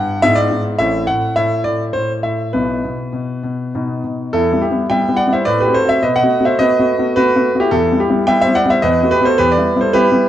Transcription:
Already playing: G2 B3 E4 F#5
0.22 G#2 B3 E4 E5
0.35 D5
0.51 G#2
0.79 A1 A2 C4 E4 E5
1.07 A2 F#5
1.36 A2 E5
1.64 A2 D5
1.93 A2 C5
2.23 A2 E5
2.53 B1 B2 B3 E4 B4
2.84 B2
3.13 B2
3.43 B2
3.75 B2 B3 D#4
4.04 B2
4.33 E2 E4 A4
4.52 G3 B3 E4
4.62 E4 G4
4.71 G3 B3 E4
4.90 G3 B3 E4 E5 G5
5.08 G3 B3 E4
5.17 D5 F#5
5.27 G3 B3 E4
5.33 C5 E5
5.45 A2 B4 D5
5.60 G4 B4
5.66 A3 C4 F#4
5.74 A4 C5
5.84 A3 C4 F#4
5.89 C5 E5
6.03 B2 B4 D#5
6.16 D#5 F#5
6.22 A3 B3 F#4
6.40 A3 B3 F#4
6.45 C5 E5
6.59 A3 B3 F#4 B4 D#5
6.79 A3 B3 F#4
6.98 A3 B3 F#4
7.16 A3 B3 F#4 B4
7.35 A3 B3 F#4
7.55 A3 B3 F#4
7.60 E4 G4
7.71 E2 E4 A4
7.92 G3 B3 E4
8.00 E4 G4
8.09 G3 B3 E4
8.27 G3 B3 E4 E5 G5
8.41 C5 E5
8.47 G3 B3 E4
8.55 D5 F#5
8.65 G3 B3 E4
8.70 C5 E5
8.82 E2 B4 D#5
9.03 A3 B3 F#4
9.11 G4 B4
9.20 A3 B3 F#4
9.25 A4 C5
9.38 E2 G4 B4
9.52 B4 D5
9.57 G3 B3 E4
9.76 G3 B3 E4
9.81 A4 C5
9.93 G3 B3 E4 G4 B4
10.12 G3 B3 E4

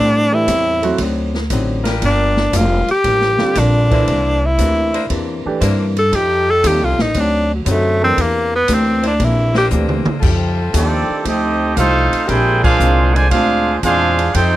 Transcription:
Already playing: A2 G3 C4 D4 E4 A4
0.00 E4
0.31 E3 A3 D4 E4 G4
0.46 E2 A2 G3 C4 E4, kick, hi-hat pedal, ride
0.82 F#3 A3 C4 F#4, ride
0.98 D2 D3 F#3 C4, kick, ride
1.02 D#4
1.35 snare
1.50 A1 D3 F#3 C4 D#4, kick, hi-hat pedal, ride
1.83 G3 D4 F4 A#4, snare, ride
2.01 G1 G2 F3 A#3 D4, kick, ride
2.06 D4
2.37 snare
2.52 F1 G2 F3 A#3 D4, kick, hi-hat pedal, ride
2.57 F4
2.88 G4, muted upright bass stroke, ride
3.04 A1 G2 F3 A#3, kick, ride
3.08 D4
3.21 snare
3.38 D3 G3 C4 F4, muted upright bass stroke, snare
3.55 A#1 G2 F3 A#3 D4, kick, snare, hi-hat pedal, ride
3.90 E3 A3 A#3 D4 E4 C5, kick, ride
4.07 C2 C3 E3 A#3 D4, kick, ride
4.46 E4
4.58 D2 C3 E3 A#3 D4, kick, hi-hat pedal, ride
4.92 A#3 D4 E4 C5, ride
5.09 E2 C3 E3 A#3 D4, kick, ride
5.45 E3 A3 D4 G4, muted upright bass stroke
5.60 G2 C3 E3 A#3 D4 E4 C5, kick, hi-hat pedal, ride
5.96 A4, ride
6.11 F2 F3 G3 A3 D#4 F4 A4, kick, ride
6.15 G4
6.50 A4
6.64 D#2 F3 G3 A3 C4 D#4 F4 G4 A4, kick, hi-hat pedal, ride
6.81 C2 F4
6.99 A1 D#4, snare
7.14 D2 D3 F#3 C4 D#4, kick, ride
7.20 D4
7.55 F#3
7.65 F#2 D3 F#3 C4 D#4, kick, hi-hat pedal, ride
7.71 A3
8.02 E3 A3 C4 D4 A#4
8.16 E2 C3 E3 A#3 D4, kick, ride
8.21 A#3
8.55 B3
8.68 D2 C3 E3 A#3 D4, kick, hi-hat pedal, ride
8.73 C4
9.02 A#3 D4 E4 C5, ride
9.07 D4
9.19 A#1 C3 E3 A#3 D4, kick, ride
9.25 E4
9.53 A#3 D4 E4 C5, snare
9.58 G4
9.71 D2 C3 E3 A3 A#3 D4 G4, hi-hat pedal
9.89 mid tom
10.05 muted upright bass stroke, mid tom
10.19 F2 F3 G3 A3 C4 F4 A4, kick, crash
10.23 D#4 G4
10.73 D#2 D#3 F3 A3 C4 D4 D#4 G4 A4 D5, kick, hi-hat pedal, ride
11.09 muted upright bass stroke
11.24 D2 F3 A3 C4 D#4 G4 A4 D#5, kick, ride
11.76 C2 F3 A3 C4 D#4 F4 G4 A4 C5 F5, kick, hi-hat pedal, ride
12.13 muted upright bass stroke, ride
12.26 A#1 A#2 G#3 C4 D4 E4 G4 G#4 A#4 C5 G5, kick, ride
12.62 G#3 D4 F4 G#4 C5 F5, kick, crash
12.80 C2 A#2 G#3 C4 D4, hi-hat pedal
13.14 D3 F3 G#3 F4 C5 D5 G#5, ride
13.30 D2 A#2 G#3 D4 F4 G#4 C5 F5, kick, ride
13.34 C4 D4
13.82 E2 A#2 G#3 C4 D4 F4 G#4 C5 F5, kick, hi-hat pedal, ride
14.19 ride
14.34 F2 F3 G3 A3 C4 D#4 F4 G4 A4 C5 G5, kick, ride
14.39 G4

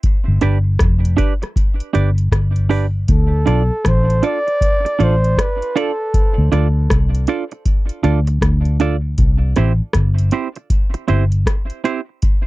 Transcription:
0.03 kick, closed hi-hat
0.28 G1
0.41 G1 D4 G4 B4 D5, cross-stick, closed hi-hat
0.79 F1, kick, cross-stick, closed hi-hat
1.05 closed hi-hat
1.17 D4 G4 B4 D5, kick, closed hi-hat
1.42 muted clean electric guitar stroke, cross-stick, closed hi-hat
1.56 kick, closed hi-hat
1.80 closed hi-hat
1.93 G1 D4 G4 B4 D5, closed hi-hat
2.18 closed hi-hat
2.32 G1, kick, cross-stick, closed hi-hat
2.56 closed hi-hat
2.69 D4 G4 B4 D5, open hi-hat
3.08 D2 A4, kick, closed hi-hat
3.46 B1 D4 F4 A4 D5, cross-stick, closed hi-hat
3.85 A1 C5, kick, cross-stick, closed hi-hat
4.10 closed hi-hat
4.23 D4 F4 A4 D5, closed hi-hat
4.47 muted clean electric guitar stroke, closed hi-hat
4.61 kick, closed hi-hat
4.85 muted clean electric guitar stroke, closed hi-hat
4.99 A1 D4 F4 A4 D5, closed hi-hat
5.03 C5
5.24 closed hi-hat
5.37 kick, cross-stick, closed hi-hat
5.42 B4
5.62 closed hi-hat
5.76 D4 F4 A4 D5, closed hi-hat
6.14 kick, closed hi-hat
6.38 D2
6.52 D2 D4 F4 A4 D5, cross-stick, closed hi-hat
6.90 C2, kick, cross-stick, closed hi-hat
7.15 closed hi-hat
7.27 D4 F4 A4 D5, closed hi-hat
7.51 muted clean electric guitar stroke, closed hi-hat
7.66 kick, closed hi-hat
7.89 closed hi-hat
8.03 D2 D4 F4 A4 D5, closed hi-hat
8.27 muted clean electric guitar stroke, closed hi-hat
8.41 D2, kick, cross-stick, closed hi-hat
8.65 closed hi-hat
8.80 D4 F4 A4 D5, closed hi-hat
9.18 C2, kick, closed hi-hat
9.56 A1 C4 E4 G4 C5, cross-stick, closed hi-hat
9.93 G1, kick, cross-stick, closed hi-hat
10.18 closed hi-hat
10.31 C4 E4 G4 C5, closed hi-hat
10.55 muted clean electric guitar stroke, closed hi-hat
10.70 kick, closed hi-hat
10.94 muted clean electric guitar stroke, closed hi-hat
11.08 G1 C4 E4 G4 C5, closed hi-hat
11.32 closed hi-hat
11.46 kick, cross-stick, closed hi-hat
11.70 closed hi-hat
11.84 C4 E4 G4 C5, closed hi-hat
12.22 kick, closed hi-hat

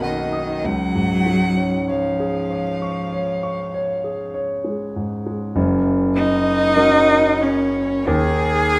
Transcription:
Already playing: B1 F#2 A#3 F#4 A#4 D#5
0.02 D#3 D#5 F#5
0.33 D#6
0.64 C#2 F#3 F#5
0.95 G#2
1.26 G#3
1.57 C#4
1.88 F3 C#5 F5
2.20 G#4
2.51 C#5
2.82 C#6
3.13 C#5
3.43 C#6
3.74 C#5
4.04 G#4
4.34 C#5
4.64 G#3
4.96 G#2
5.27 G#3
5.56 F#1 F#2
6.15 D#4 D#5
6.76 F#3 C#4 A#4
7.40 C#4 C#5
8.06 D#2 D#3 G#4 G#5

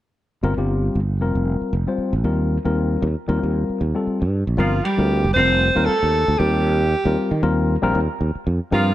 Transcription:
0.43 G1 G3 C4 F4 A#4
0.57 G1 G3 C4 F4 G4
0.95 G1
1.21 F1 G3 C4 F4 A#4
1.35 F1
1.61 muted fretless electric bass stroke
1.73 F1
1.87 G3 C4 F4 C5
1.98 muted fretless electric bass stroke
2.13 A#1
2.24 D#2 G3 C4 F4 A#4
2.65 D#2 G3 C4 F4 A#4
3.02 D#2
3.28 D#2 G3 C4 F4 A#4
3.43 D#2
3.70 muted fretless electric bass stroke
3.81 D#2
3.94 G3 C4 F4 A4
4.07 muted fretless electric bass stroke
4.22 G2
4.31 F4 A4
4.47 A#1
4.57 G1 F3 G3 C4 F4 A#4
4.83 G3 F4 G4
4.97 D2 G3 C4 F4 A#4
5.24 G1
5.34 F1 G3 C4 F4 A#4 C5
5.75 D#2 G3 C4 F4 A#4
5.85 A3 A4, muted fretless electric bass stroke
6.03 D#2 F4 G4
6.28 D2
6.39 D#2 G3 C4 F4 G4 A#4
6.91 F4 A#4
7.05 D#2 G3 C4 F4 A#4
7.31 D#3
7.42 D#2 G3 C4 F4 A#4
7.82 A#1 G3 C4 F4 A#4
7.95 D#2
8.08 F4 A#4
8.21 D#2
8.35 muted fretless electric bass stroke
8.47 F2
8.71 G2 F3 G3 C4 F4 A#4

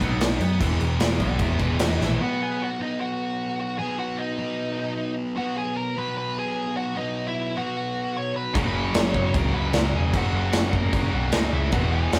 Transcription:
0.00 B1 B2 F#3 B3 D#4, kick, crash
0.20 B1 B2 F#3, snare, crash
0.40 F#2 B2 F#3, crash
0.60 E1 E2 B2 E3 G#3 B3, kick, crash
0.79 E1 E2 B2 E3 G#3, crash
0.99 E1 E2 B2 E3 G#3 B3, snare, crash
1.19 B1 E2 B2 E3 G#3 D5 F#5, kick, crash
1.39 E1 E2 B2 E3 G#3 G#4 E5, kick, crash
1.59 E1 E2 B2 E3 G#3 B3 B4, kick, crash
1.79 E1 E2 B2 E3 G#3 D#4 D#5, snare, crash
2.00 A#1 E2 B2 E3 G#3 E4 E5, snare
2.19 B2 F#3 B3 F#4 F#5
2.42 G#4 G#5
2.62 F#4 F#5
2.79 B2 F#3 B3 D#4
2.83 D#5
3.00 F#4 F#5
3.59 F#4 F#5
3.78 B2 F#3 B3 G#4 G#5
3.99 F#4 F#5
4.17 D#4 D#5
4.38 B2 F#3 B3
5.36 B2 F#3 B3 F#4 F#5
5.57 G#4 G#5
5.76 A#4 A#5
5.96 B2 F#3 B3 B4 B5
6.17 B4 B5
6.38 G#4 G#5
6.77 F#4 F#5
6.96 B2 F#3 B3 D#4 D#5
7.28 E4 E5
7.56 B2 F#3 B3 F#4 F#5
8.17 C#5 C#6
8.36 B4 B5
8.54 F#1 F#2 C#3 F#3 A#3 C#4 F#4 A#4 A#5, kick, crash
8.67 B4 B5
8.94 F#1 C#5 C#6, snare, crash
9.14 F#1 F#2 C#3 F#3, kick
9.26 C#5 C#6
9.34 C#2 A#4 A#5, kick, crash
9.53 C#2 F#2 C#3 F#3 A#3 C#4 F#4 B4 B5
9.73 C#2 F#2 C#3 F#3 A#3 C#4 F#4 A#4 A#5, snare, crash
9.93 E1 G#4 G#5
10.13 F#1 F#2 C#3 F#3 A#3 C#4 F#4 F#5, kick, crash
10.17 F#4
10.33 F#1
10.53 F#1, snare, crash
10.73 F#2 C#3 F#3 A#4 A#5, kick
10.93 F#1 A#4 A#5, kick, crash
11.13 B1 F#2 C#3 F#3 A#3 C#4 F#4 F#5
11.32 C#2 F#2 C#3 F#3 D#4 D#5, snare, crash
11.36 A#3 C#4 F#4
11.53 C#2 E4 E5
11.72 E1 E2 B2 E3 G#3 B3 F#4 F#5, kick, crash
11.76 E4
11.92 G#4 G#5
12.13 E1, snare, crash

